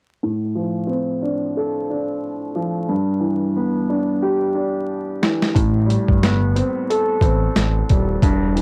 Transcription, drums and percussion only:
5.23 snare
5.42 snare
5.56 kick, closed hi-hat
5.90 closed hi-hat
6.08 kick
6.23 snare, closed hi-hat
6.56 closed hi-hat
6.91 closed hi-hat
7.21 kick, closed hi-hat
7.56 snare, closed hi-hat
7.90 kick, closed hi-hat
8.22 kick, closed hi-hat
8.57 closed hi-hat

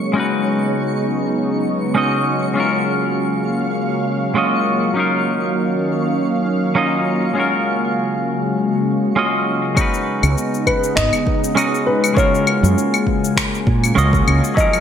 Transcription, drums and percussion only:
0.04 cabasa
0.18 cabasa
0.34 cabasa
0.64 cabasa
0.78 cabasa
1.24 cabasa
1.38 cabasa
1.84 cabasa
1.98 cabasa
3.04 cabasa
3.17 cabasa
3.34 cabasa
3.64 cabasa
3.78 cabasa
3.95 cabasa
4.24 cabasa
4.38 cabasa
4.54 cabasa
4.84 cabasa
4.98 cabasa
5.14 cabasa
5.44 cabasa
5.58 cabasa
5.74 cabasa
6.04 cabasa
6.18 cabasa
6.34 cabasa
6.64 cabasa
6.78 cabasa
6.94 cabasa
7.24 cabasa
7.37 cabasa
7.54 cabasa
7.84 cabasa
7.98 cabasa
8.14 cabasa
8.44 cabasa
8.58 cabasa
8.74 cabasa
9.04 cabasa
9.18 cabasa
9.34 cabasa
9.64 cabasa
9.77 kick, cabasa, claves
9.94 cabasa
10.23 cabasa, claves
10.38 cabasa
10.54 cabasa
10.67 kick, claves
10.84 cabasa
10.97 finger snap, kick, cabasa
11.13 cabasa, claves
11.27 kick
11.44 cabasa
11.57 cabasa, claves
11.75 cabasa
12.04 cabasa, claves
12.17 kick, cabasa
12.35 cabasa
12.47 claves
12.64 cabasa
12.78 cabasa
12.94 cabasa, claves
13.07 kick
13.24 cabasa
13.37 finger snap, kick, cabasa, claves
13.55 cabasa
13.67 kick
13.84 cabasa, claves
13.98 cabasa
14.13 kick, cabasa
14.28 claves
14.44 cabasa
14.57 kick, cabasa
14.73 cabasa, claves

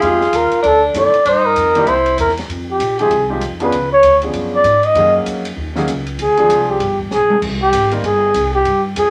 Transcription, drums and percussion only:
0.02 ride
0.21 snare
0.33 hi-hat pedal, ride
0.52 ride
0.64 ride
0.94 hi-hat pedal, ride
1.14 ride
1.25 ride
1.56 hi-hat pedal, ride
1.75 ride
1.87 ride
2.06 ride
2.18 hi-hat pedal, ride
2.29 snare
2.37 snare, ride
2.50 ride
2.80 hi-hat pedal, ride
2.99 ride
3.11 ride
3.41 hi-hat pedal, ride
3.60 ride
3.72 ride
4.03 hi-hat pedal, ride
4.22 ride
4.33 ride
4.64 hi-hat pedal, ride
4.83 ride
4.95 ride
5.26 hi-hat pedal, ride
5.45 ride
5.75 snare
5.88 hi-hat pedal, ride
6.07 ride
6.19 ride
6.37 ride
6.50 hi-hat pedal, ride
6.80 ride
6.99 kick
7.11 snare, hi-hat pedal
7.30 high tom
7.42 kick, crash
7.73 hi-hat pedal, ride
7.91 ride
8.04 ride
8.34 hi-hat pedal, ride
8.65 ride
8.96 hi-hat pedal, ride

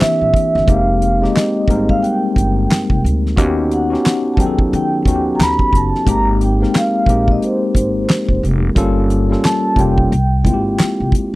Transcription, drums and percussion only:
0.01 snare, clap, closed hi-hat
0.34 kick, closed hi-hat
0.57 snare
0.68 kick, closed hi-hat
1.02 closed hi-hat
1.24 snare
1.36 snare, clap, closed hi-hat
1.68 kick, closed hi-hat
1.89 kick
2.04 closed hi-hat
2.36 kick, closed hi-hat
2.71 snare, clap, closed hi-hat
2.90 kick
3.06 closed hi-hat
3.26 snare
3.37 kick, closed hi-hat
3.71 closed hi-hat
3.94 snare
4.06 snare, clap, closed hi-hat
4.37 kick, closed hi-hat
4.59 kick
4.73 closed hi-hat
5.05 kick, closed hi-hat
5.40 snare, clap, closed hi-hat
5.59 kick
5.73 kick, closed hi-hat
5.95 snare
6.07 kick, closed hi-hat
6.41 closed hi-hat
6.63 snare
6.75 snare, clap, closed hi-hat
7.06 kick, closed hi-hat
7.28 kick
7.42 closed hi-hat
7.75 kick, closed hi-hat
8.09 snare, clap, closed hi-hat
8.29 kick
8.45 closed hi-hat
8.76 kick, closed hi-hat
9.10 closed hi-hat
9.32 snare
9.44 snare, clap, closed hi-hat
9.76 kick, closed hi-hat
9.98 kick
10.12 closed hi-hat
10.45 kick, closed hi-hat
10.79 snare, clap, closed hi-hat
11.12 kick, closed hi-hat

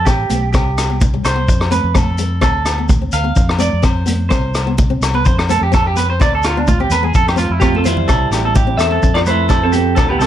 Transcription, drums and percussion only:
0.05 kick, cross-stick, muted conga, low agogo, shekere
0.30 closed hi-hat, high conga, shekere
0.53 kick, cross-stick, low agogo, shekere
0.78 cross-stick, closed hi-hat, muted conga, low agogo, shekere
1.01 kick, high conga, shekere
1.25 cross-stick, closed hi-hat, low agogo, shekere
1.48 kick, muted conga, shekere
1.61 cross-stick, low agogo
1.72 closed hi-hat, high conga, shekere
1.94 kick, cross-stick, muted conga, high conga, low agogo, shekere
2.18 closed hi-hat, shekere
2.41 kick, cross-stick, muted conga, low agogo, shekere
2.65 cross-stick, closed hi-hat, muted conga, low agogo, shekere
2.89 kick, high conga, low conga, shekere
3.12 closed hi-hat, low agogo, shekere
3.36 kick, muted conga, shekere
3.49 cross-stick, low agogo
3.59 closed hi-hat, high conga, shekere
3.83 kick, cross-stick, low agogo, shekere
4.07 closed hi-hat, high conga, shekere
4.31 kick, cross-stick, muted conga, low agogo, shekere
4.55 cross-stick, closed hi-hat, muted conga, low agogo, shekere
4.78 kick, high conga, shekere
5.02 cross-stick, closed hi-hat, low agogo, shekere
5.25 kick, muted conga, shekere
5.39 cross-stick, low agogo
5.49 closed hi-hat, high conga, shekere
5.73 kick, cross-stick, muted conga, high conga, low agogo, shekere
5.97 closed hi-hat, shekere
6.21 kick, cross-stick, muted conga, low agogo, shekere
6.43 cross-stick, closed hi-hat, muted conga, low agogo, shekere
6.67 kick, high conga, low conga, shekere
6.91 closed hi-hat, low conga, low agogo, shekere
7.14 kick, shekere
7.28 cross-stick, low agogo
7.37 closed hi-hat, high conga, shekere
7.61 kick, cross-stick, high conga, low agogo, shekere
7.75 high conga
7.85 closed hi-hat, low conga, shekere
7.97 low conga
8.08 kick, cross-stick, muted conga, low agogo, shekere
8.32 cross-stick, closed hi-hat, low agogo, shekere
8.55 kick, high conga, shekere
8.79 cross-stick, closed hi-hat, muted conga, low agogo, shekere
9.02 kick, muted conga, shekere
9.15 cross-stick, low agogo
9.26 closed hi-hat, muted conga, high conga, shekere
9.49 kick, cross-stick, high conga, low agogo, shekere
9.73 closed hi-hat, shekere
9.97 kick, cross-stick, muted conga, low agogo, shekere
10.21 cross-stick, closed hi-hat, low agogo, shekere

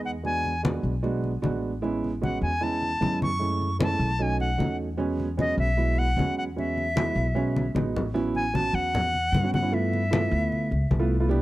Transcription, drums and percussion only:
0.25 high conga
0.45 high conga
0.65 high conga
0.85 high conga
1.04 high conga
1.24 high conga
1.44 high conga
1.84 high conga
2.04 high conga
2.23 high conga
2.63 high conga
2.82 high conga
3.02 high conga
3.22 high conga
3.42 high conga
3.62 high conga
3.81 high conga
4.01 high conga
4.20 high conga
4.40 high conga
4.60 high conga
5.00 high conga
5.20 high conga
5.39 high conga
5.79 high conga
5.99 high conga
6.19 high conga
6.58 high conga
6.78 high conga
6.97 high conga
7.17 high conga
7.37 high conga
7.56 high conga
7.76 high conga
7.96 low conga
8.16 high conga
8.35 high conga
8.55 high conga
8.95 high conga, low conga
9.14 high conga
9.34 high conga
9.54 high conga
9.73 high conga
9.93 high conga
10.13 high conga
10.32 high conga
10.52 high conga
10.72 high conga
10.91 high conga
11.31 high conga

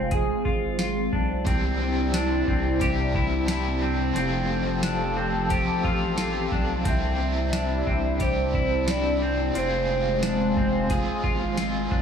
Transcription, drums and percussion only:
0.11 kick, closed hi-hat
0.45 kick
0.79 snare, closed hi-hat
1.13 kick
1.46 kick, closed hi-hat
2.14 snare, closed hi-hat
2.48 kick
2.81 kick, closed hi-hat
3.15 kick
3.48 snare, closed hi-hat
4.16 closed hi-hat
4.83 snare, closed hi-hat
5.50 kick, closed hi-hat
5.84 kick
6.18 snare, closed hi-hat
6.52 kick
6.85 kick, closed hi-hat
7.53 snare, closed hi-hat
7.87 kick
8.20 kick, closed hi-hat
8.54 kick
8.88 snare, closed hi-hat
9.55 closed hi-hat
10.23 snare, closed hi-hat
10.57 kick
10.90 kick, closed hi-hat
11.24 kick
11.57 snare, closed hi-hat
11.91 kick

